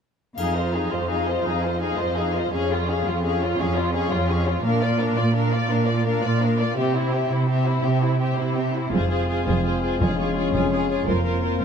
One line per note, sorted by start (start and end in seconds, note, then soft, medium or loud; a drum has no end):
0.38 0.86 F2 soft
0.38 0.56 D#4 soft
0.38 0.55 G#4 soft
0.38 0.55 F5 soft
0.38 triangle soft
0.55 0.75 F4 soft
0.55 0.74 C5 soft
0.55 0.74 D#5 soft
0.73 0.92 D#4 soft
0.73 0.92 G#4 soft
0.73 0.92 F5 soft
0.92 1.40 F2 soft
0.92 1.10 F4 soft
0.92 1.11 C5 soft
0.92 1.10 D#5 soft
1.09 1.26 D#4 soft
1.09 1.27 G#4 soft
1.09 1.26 F5 soft
1.26 1.46 F4 soft
1.26 1.46 C5 soft
1.26 1.45 D#5 soft
1.44 1.93 F2 soft
1.44 1.64 D#4 soft
1.44 1.64 G#4 soft
1.44 1.63 F5 soft
1.63 1.81 F4 soft
1.63 1.82 C5 soft
1.63 1.81 D#5 soft
1.81 1.98 D#4 soft
1.81 1.99 G#4 soft
1.81 1.98 F5 soft
1.98 2.47 F2 soft
1.98 2.17 F4 soft
1.98 2.17 C5 soft
1.98 2.17 D#5 soft
2.17 2.35 D#4 soft
2.17 2.35 G#4 soft
2.17 2.36 F5 soft
2.35 2.53 F4 soft
2.35 2.53 C5 soft
2.35 2.53 D#5 soft
2.53 3.00 F2 soft
2.53 2.70 C#4 soft
2.53 2.70 G#4 soft
2.53 2.70 F5 soft
2.71 2.89 F4 soft
2.71 2.89 C#5 soft
2.89 3.07 C#4 soft
2.89 3.07 G#4 soft
2.89 3.07 F5 soft
3.06 3.54 F2 soft
3.06 3.24 F4 soft
3.06 3.25 F4 soft
3.06 3.24 C#5 soft
3.24 3.41 C#4 soft
3.24 3.41 G#4 soft
3.24 3.41 F5 soft
3.42 3.60 F4 soft
3.42 3.60 C#5 soft
3.59 4.07 F2 soft
3.59 3.77 C#4 soft
3.59 3.77 G#4 soft
3.59 3.78 F5 soft
3.77 3.95 F4 soft
3.77 3.95 C#5 soft
3.94 4.12 C#4 soft
3.94 4.11 G#4 soft
3.94 4.11 F5 soft
4.12 4.59 F2 soft
4.12 4.30 F4 soft
4.12 4.31 F4 soft
4.12 4.31 C#5 soft
4.30 4.48 C#4 soft
4.30 4.48 G#4 soft
4.30 4.48 F5 soft
4.47 4.65 F4 soft
4.47 4.65 C#5 soft
4.64 5.12 A#2 soft
4.64 4.81 D4 soft
4.64 4.82 A#4 soft
4.64 4.82 F5 soft
4.82 5.00 F4 soft
4.82 5.00 D5 soft
4.82 5.01 D5 soft
5.00 5.18 D4 soft
5.00 5.18 A#4 soft
5.00 5.18 F5 soft
5.16 5.65 A#2 soft
5.16 5.36 F4 soft
5.16 5.35 D5 soft
5.16 5.36 D5 soft
5.34 5.52 D4 soft
5.34 5.52 A#4 soft
5.34 5.52 F5 soft
5.52 5.71 F4 soft
5.52 5.71 D5 soft
5.70 6.18 A#2 soft
5.70 5.89 D4 soft
5.70 5.88 A#4 soft
5.70 5.89 F5 soft
5.87 6.07 F4 soft
5.87 6.06 D5 soft
5.87 6.07 D5 soft
6.05 6.23 D4 soft
6.05 6.23 A#4 soft
6.05 6.23 F5 soft
6.23 6.71 A#2 soft
6.23 6.42 F4 soft
6.23 6.41 D5 soft
6.23 6.42 D5 soft
6.41 6.59 D4 soft
6.41 6.60 A#4 soft
6.41 6.60 F5 soft
6.59 6.77 F4 soft
6.59 6.77 D5 soft
6.59 6.78 D5 soft
6.76 7.25 C3 soft
6.76 6.95 C4 soft
6.76 6.93 G4 soft
6.76 6.93 E5 soft
6.94 7.13 E4 soft
6.94 7.13 C5 soft
7.11 7.31 C4 soft
7.11 7.30 G4 soft
7.11 7.31 E5 soft
7.30 7.78 C3 soft
7.30 7.48 E4 soft
7.30 7.49 E4 soft
7.30 7.49 C5 soft
7.48 7.65 C4 soft
7.48 7.65 G4 soft
7.48 7.66 E5 soft
7.66 7.84 E4 soft
7.66 7.84 C5 soft
7.84 8.32 C3 soft
7.84 8.02 C4 soft
7.84 8.02 G4 soft
7.84 8.02 E5 soft
8.02 8.20 E4 soft
8.02 8.20 C5 soft
8.19 8.36 C4 soft
8.19 8.37 G4 soft
8.19 8.37 E5 soft
8.37 8.86 C3 soft
8.37 8.56 E4 soft
8.37 8.56 C5 soft
8.55 8.74 C4 soft
8.55 8.75 G4 soft
8.55 8.75 E5 soft
8.74 8.92 E4 soft
8.74 8.93 E4 soft
8.74 8.93 C5 soft
8.92 9.38 F1 soft
8.92 9.38 F2 soft
8.92 11.04 G#3 soft
8.92 9.97 C4 soft
8.92 9.09 F4 soft
8.92 9.09 G#4 soft
8.92 9.10 C5 soft
9.10 9.27 F4 soft
9.10 9.28 G#4 soft
9.10 9.29 C5 soft
9.29 9.45 F4 soft
9.29 9.46 G#4 soft
9.29 9.46 C5 soft
9.46 9.92 F1 soft
9.46 9.92 F2 soft
9.46 9.63 F4 soft
9.46 9.64 G#4 soft
9.46 9.64 C5 soft
9.64 9.81 F4 soft
9.64 9.82 G#4 soft
9.64 9.83 C5 soft
9.82 10.00 F4 soft
9.82 9.99 G#4 soft
9.82 10.01 C5 soft
10.00 10.46 F1 soft
10.00 10.45 F2 soft
10.00 10.51 F2 soft
10.00 11.04 C#4 soft
10.00 10.18 F4 soft
10.00 10.18 G#4 soft
10.00 10.18 C#5 soft
10.19 10.36 F4 soft
10.19 10.36 G#4 soft
10.19 10.35 C#5 soft
10.36 10.53 F4 soft
10.36 10.53 G#4 soft
10.36 10.54 C#5 soft
10.54 10.99 F1 soft
10.54 10.99 F2 medium
10.54 10.71 F4 soft
10.54 10.71 G#4 soft
10.54 10.71 C#5 soft
10.72 10.89 F4 soft
10.72 10.88 G#4 soft
10.72 10.89 C#5 soft
10.89 11.07 F4 soft
10.89 11.07 G#4 soft
10.89 11.08 C#5 soft
11.07 11.53 F1 soft
11.07 11.52 F2 soft
11.07 11.65 A#3 soft
11.07 11.65 C4 soft
11.07 11.25 F4 soft
11.07 11.23 A#4 soft
11.07 11.25 C5 soft
11.24 11.42 F4 soft
11.24 11.41 A#4 soft
11.24 11.42 C5 soft
11.42 11.59 F4 soft
11.42 11.59 A#4 soft
11.42 11.59 C5 soft
11.60 11.65 F1 soft
11.60 11.65 F2 soft
11.60 11.65 F4 soft
11.60 11.65 A#4 soft
11.60 11.65 C5 soft